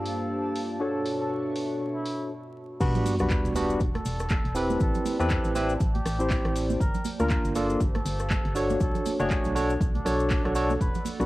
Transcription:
Already playing: analog synth pad G2 A#3 D4 F4 A5, tine electric piano A#3 D4 F4 G4, ambient pad G4 C5 F5 A5, muted trumpet A4, violin section D5
0.06 open hi-hat
0.56 open hi-hat
0.80 analog synth pad B2 F#4 C#6, tine electric piano D4 F#4 A4 C#5, muted trumpet A4, ambient pad B4
1.06 ambient pad E5, open hi-hat
1.20 muted trumpet A4
1.56 open hi-hat
1.95 muted trumpet E4
2.06 open hi-hat
2.80 fm bass E1, tine electric piano G3 B3 D4 F#4, muted trumpet B4, ambient pad A5, kick, closed hi-hat, crash, sub drop, cabasa
2.93 ambient pad D5, closed hi-hat, low conga, cabasa
3.05 ambient pad F#5, open hi-hat, high conga, cabasa
3.19 fm bass B1, tine electric piano G3 B3 D4 F#4, muted trumpet B4, cross-stick, cabasa
3.30 kick, clap, closed hi-hat, cabasa
3.45 fm bass E1, closed hi-hat, cabasa
3.55 tine electric piano G3 B3 D4 F#4, open hi-hat, high conga, cabasa
3.70 closed hi-hat, cabasa
3.80 fm bass E1, kick, closed hi-hat, cabasa
3.95 muted trumpet A4, cross-stick, closed hi-hat, high conga
4.05 fm bass E1, open hi-hat, cabasa
4.20 cross-stick, closed hi-hat, cabasa
4.30 kick, clap, closed hi-hat, high conga, cabasa
4.45 fm bass E1, closed hi-hat
4.55 tine electric piano C4 E4 G4 B4, open hi-hat, cabasa
4.70 high conga, cabasa
4.80 fm bass A1, muted trumpet A4, kick, closed hi-hat, cabasa
4.95 closed hi-hat, low conga, cabasa
5.05 open hi-hat, high conga, cabasa
5.19 fm bass E2, tine electric piano C4 E4 G4 B4, muted trumpet A4, cross-stick, cabasa
5.30 kick, clap, closed hi-hat, cabasa
5.44 fm bass A1, closed hi-hat, cabasa
5.55 tine electric piano C4 E4 G4 B4, open hi-hat, high conga, cabasa
5.69 ambient pad G5, closed hi-hat, cabasa
5.80 fm bass A1, kick, closed hi-hat, cabasa
5.95 muted trumpet G4, closed hi-hat, high conga
6.06 fm bass A1, cross-stick, open hi-hat, cabasa
6.19 tine electric piano C4 E4 G4 C5, closed hi-hat, cabasa
6.30 kick, clap, open hi-hat, high conga, cabasa
6.45 fm bass A1, cross-stick, closed hi-hat
6.56 open hi-hat, cabasa
6.70 high conga, cabasa
6.81 fm bass G1, ambient pad G4, muted trumpet A#4, kick, closed hi-hat, cabasa
6.94 closed hi-hat, low conga, cabasa
7.05 open hi-hat, high conga, cabasa
7.20 fm bass D2, tine electric piano A#3 D4 F4 A#4, muted trumpet A#4, ambient pad C5, cross-stick, cabasa
7.30 kick, clap, closed hi-hat, cabasa
7.45 fm bass G1, closed hi-hat, cabasa
7.55 tine electric piano A#3 D4 F4 A4, ambient pad F5, open hi-hat, high conga, cabasa
7.70 closed hi-hat, cabasa
7.80 fm bass G1, kick, closed hi-hat, cabasa
7.95 muted trumpet A4, cross-stick, closed hi-hat, high conga
8.06 fm bass G1, open hi-hat, cabasa
8.19 cross-stick, closed hi-hat, cabasa
8.30 kick, clap, closed hi-hat, high conga, cabasa
8.45 fm bass G1, closed hi-hat
8.55 tine electric piano D4 F#4 A4 C#5, open hi-hat, cabasa
8.70 high conga, cabasa
8.80 fm bass B1, muted trumpet A4, ambient pad A4, kick, closed hi-hat, cabasa
8.94 ambient pad D5, closed hi-hat, low conga, cabasa
9.06 open hi-hat, high conga, cabasa
9.20 fm bass F#1, tine electric piano A3 D4 F#4 C#5, muted trumpet G#4, ambient pad F#5, cross-stick, cabasa
9.30 kick, clap, closed hi-hat, cabasa
9.45 fm bass B1, closed hi-hat, cabasa
9.55 tine electric piano D4 F#4 A4 C#5, open hi-hat, high conga, cabasa
9.70 closed hi-hat, cabasa
9.81 fm bass B1, kick, closed hi-hat, cabasa
9.95 muted trumpet D4, closed hi-hat, high conga
10.05 fm bass B1, tine electric piano D4 F#4 A4 C#5, cross-stick, open hi-hat, cabasa
10.20 closed hi-hat, cabasa
10.30 kick, clap, open hi-hat, high conga, cabasa
10.45 fm bass B1, tine electric piano D4 F#4 A4 C#5, cross-stick, closed hi-hat
10.55 tine electric piano D4 F#4 A4 C#5, open hi-hat, cabasa
10.70 high conga, cabasa
10.80 fm bass E1, muted trumpet B4, kick, closed hi-hat, cabasa
10.95 closed hi-hat, low conga, cabasa
11.05 open hi-hat, high conga, cabasa
11.20 fm bass B1, tine electric piano G3 B3 D4 F#4, muted trumpet B4, cross-stick, cabasa

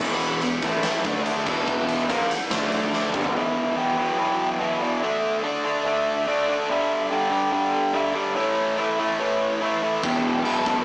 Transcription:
Already playing: analog synth pad E4 B4 F#5
0.00 picked electric bass E1, distorted electric guitar E2 B2 E3
0.20 ride
0.41 picked electric bass E1, distorted electric guitar E2 B2, ride
0.62 picked electric bass A1, distorted electric guitar A2 E3 A3, kick, ride
0.83 snare, ride
1.04 picked electric bass D2, distorted electric guitar D3 A3 D4, kick, ride
1.26 ride
1.46 picked electric bass E1, distorted electric guitar E2 B2 E3, analog synth pad E4 B4 F#5, kick, crash
1.68 kick
1.88 ride
2.09 picked electric bass A#1, distorted electric guitar A#2 F3 A#3, kick, ride
2.21 snare
2.31 ride
2.51 picked electric bass D2, distorted electric guitar D3 A3 D4, analog synth pad D4 A4 E5, kick, snare, ride
2.72 ride
2.93 snare
3.14 picked electric bass G1, distorted electric guitar G2 D3 G3, kick
3.24 floor tom
3.35 distorted electric guitar E2 B2 E3, analog synth pad E3 F#3 B3, lead electric guitar E5
3.76 distorted electric guitar E2 B2 E3, lead electric guitar G5
3.98 distorted electric guitar E2 B2 E3, lead electric guitar G5
4.17 distorted electric guitar E2 B2 E3
4.59 distorted electric guitar E2 B2 E3, lead electric guitar E5
4.80 distorted electric guitar E2 B2 E3, lead electric guitar D5
4.94 lead electric guitar D5
5.01 distorted electric guitar D3 A3 D4, analog synth pad D4 A4 E5, lead electric guitar E5
5.42 distorted electric guitar D3 A3 D4, lead electric guitar D5
5.64 distorted electric guitar D3 A3 D4
5.85 distorted electric guitar D3 A3 D4, lead electric guitar E5
6.27 distorted electric guitar D3 A3 D4, lead electric guitar D5
6.48 distorted electric guitar D3 A3 D4
6.69 distorted electric guitar G2 D3 G3, analog synth pad G3, lead electric guitar E5
7.10 distorted electric guitar G2 D3 G3, lead electric guitar G5
7.31 distorted electric guitar G2 D3 G3
7.52 distorted electric guitar G2 D3 G3, lead electric guitar G5
7.93 distorted electric guitar G2 D3 G3, lead electric guitar E5
8.14 distorted electric guitar G2 D3 G3, lead electric guitar D5
8.35 distorted electric guitar A2 E3 A3, analog synth pad A3 E4 B4, lead electric guitar C#5
8.77 distorted electric guitar A2 E3 A3, lead electric guitar E5
8.98 distorted electric guitar A2 E3 A3
9.20 distorted electric guitar A2 E3 A3, lead electric guitar C#5
9.61 distorted electric guitar A2 E3 A3, lead electric guitar E5
9.83 distorted electric guitar A2 E3 A3
10.03 picked electric bass E1, distorted electric guitar E2 B2 E3, analog synth pad E3 F#3 B3, lead electric guitar G5, kick, crash
10.25 picked electric bass E1
10.45 picked electric bass E1, distorted electric guitar E2 B2 E3, lead electric guitar A5, crash
10.66 picked electric bass E1, distorted electric guitar E2 B2 E3, kick
10.70 distorted electric guitar E2

